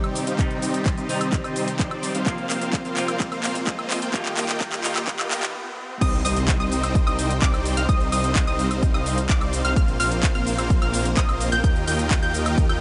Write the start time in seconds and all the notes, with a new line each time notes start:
Already playing: C3 D#3 G3 C4 D#4 G4 C5 D5, riser
0.04 closed hi-hat, high woodblock
0.15 open hi-hat, shaker
0.27 G3 C4 D#4 C5 F5, closed hi-hat, shaker
0.38 C3 D#3 G3 C4 D#4 C5, kick, clap, closed hi-hat, shaker
0.51 closed hi-hat
0.62 G3 C4 D#4 C5 D#5, open hi-hat, shaker
0.74 closed hi-hat, shaker
0.86 kick, clap, closed hi-hat, shaker
0.97 G3 C4 D#4 C5 D#5, closed hi-hat, shaker
1.08 C3 D#3 G3 D#4, open hi-hat, shaker
1.21 closed hi-hat, high woodblock, shaker
1.33 kick, clap, closed hi-hat, shaker
1.44 G3 C4 D#4 C5 D#5, closed hi-hat, high woodblock, shaker
1.56 open hi-hat, shaker
1.68 closed hi-hat, shaker
1.79 G3 C4 D#4 C5 D5, kick, clap, closed hi-hat, shaker
1.91 closed hi-hat, high woodblock
2.03 open hi-hat, shaker
2.15 G3 C4 D#4 C5 F5, closed hi-hat, shaker
2.25 A#2 C3 F3 A#3 C4 F4 C5 F5, kick, clap, closed hi-hat, shaker
2.38 closed hi-hat
2.50 A#3 C4 F4 C5 F5, clap, open hi-hat, shaker
2.61 closed hi-hat, shaker
2.73 kick, clap, closed hi-hat, shaker
2.85 A#3 C4 F4 C5 F5, closed hi-hat, shaker
2.95 C3 F3 A#3 F4, clap, open hi-hat, shaker
3.08 closed hi-hat, high woodblock, shaker
3.20 kick, clap, closed hi-hat, shaker
3.32 A#3 C4 F4 C5 F5, closed hi-hat, high woodblock, shaker
3.44 clap, open hi-hat, shaker
3.55 closed hi-hat, shaker
3.67 A#3 C4 F4 C5 D#5, kick, clap, closed hi-hat, shaker
3.79 closed hi-hat, high woodblock
3.90 clap, open hi-hat, shaker
4.02 A#3 C4 F4 C5 G5, closed hi-hat, shaker
4.13 D#3 G3 A#3 F4 G4 D#5 G5, kick, clap, closed hi-hat, shaker
4.26 clap, closed hi-hat
4.37 A#3 F4 G4 D#5 G5, clap, open hi-hat, shaker
4.49 clap, closed hi-hat, shaker
4.61 kick, clap, closed hi-hat, shaker
4.72 A#3 F4 G4 D#5 G5, clap, closed hi-hat, shaker
4.83 D#3 G3 A#3 F4, clap, open hi-hat, shaker
4.96 clap, closed hi-hat, high woodblock, shaker
5.07 kick, clap, closed hi-hat, shaker
5.19 A#3 F4 G4 D#5 G5, clap, closed hi-hat, high woodblock, shaker
5.31 clap, open hi-hat, shaker
5.43 clap, closed hi-hat, shaker
6.01 C2 G3 C4 D#4 C5 D#5 G5 D#6, kick, closed hi-hat, crash, impact, shaker
6.13 closed hi-hat, shaker
6.25 C2 G3 C4 D#4 C5 D#5 D#6, open hi-hat, shaker
6.37 closed hi-hat, shaker
6.48 kick, clap, closed hi-hat, shaker
6.60 C2 G3 C4 D#4 C5 D#5 D#6, closed hi-hat, shaker
6.72 open hi-hat, shaker
6.83 closed hi-hat, high woodblock, shaker
6.95 kick, closed hi-hat, shaker
7.07 C2 G3 C4 D#4 C5 D#5 D#6, closed hi-hat, high woodblock, shaker
7.19 open hi-hat, shaker
7.30 closed hi-hat, shaker
7.42 C2 G3 C4 D#4 C5 D5 D6, kick, clap, closed hi-hat, shaker
7.54 closed hi-hat, high woodblock, shaker
7.66 open hi-hat, shaker
7.77 C2 G3 C4 D#4 C5 F5 F6, closed hi-hat, shaker
7.89 C2 G3 C4 D#4 C5 D#5 F5 D#6, kick, closed hi-hat, shaker
8.01 closed hi-hat, shaker
8.12 C2 G3 C4 D#4 C5 D#5 D#6, open hi-hat, shaker
8.24 closed hi-hat, shaker
8.36 kick, clap, closed hi-hat, shaker
8.47 C2 G3 C4 D#4 C5 D#5 D#6, closed hi-hat, shaker
8.59 open hi-hat, shaker
8.71 closed hi-hat, high woodblock, shaker
8.83 kick, closed hi-hat, shaker
8.94 C2 G3 C4 D#4 C5 D#5 D#6, closed hi-hat, high woodblock, shaker
9.06 open hi-hat, shaker
9.18 closed hi-hat, shaker
9.29 C2 G3 C4 D#4 C5 D5 D6, kick, clap, closed hi-hat, shaker
9.41 closed hi-hat, high woodblock, shaker
9.53 open hi-hat, shaker
9.65 C2 G3 C4 D#4 C5 F5 F6, closed hi-hat, shaker
9.76 A#1 A#3 C4 F4 A#4 C5 F5 F6, kick, closed hi-hat, shaker
9.88 closed hi-hat, shaker
10.00 A#1 A#3 C4 F4 C5 F5 F6, open hi-hat, shaker
10.12 closed hi-hat, shaker
10.23 kick, clap, closed hi-hat, shaker
10.35 A#1 A#3 C4 F4 C5 F5 F6, closed hi-hat, shaker
10.47 open hi-hat, shaker
10.59 closed hi-hat, high woodblock, shaker
10.70 kick, closed hi-hat, shaker
10.82 A#1 A#3 C4 F4 C5 F5 F6, closed hi-hat, high woodblock, shaker
10.94 open hi-hat, shaker
11.05 closed hi-hat, shaker
11.17 A#1 A#3 C4 F4 C5 D#5 D#6, kick, clap, closed hi-hat, shaker
11.29 closed hi-hat, high woodblock, shaker
11.41 open hi-hat, shaker
11.52 A#1 A#3 C4 F4 C5 G5 G6, closed hi-hat, shaker
11.64 D#2 A#3 D#4 G4 D#5 F5 G5 G6, kick, closed hi-hat, shaker
11.76 closed hi-hat, shaker
11.87 D#2 A#3 F4 G4 D#5 G5 G6, open hi-hat, shaker
11.99 closed hi-hat, shaker
12.11 kick, clap, closed hi-hat, shaker
12.22 D#2 A#3 F4 G4 D#5 G5 G6, closed hi-hat, shaker
12.34 open hi-hat, shaker
12.46 closed hi-hat, high woodblock, shaker
12.58 kick, closed hi-hat, shaker
12.69 D#2 A#3 F4 G4 D#5 G5 G6, closed hi-hat, high woodblock, shaker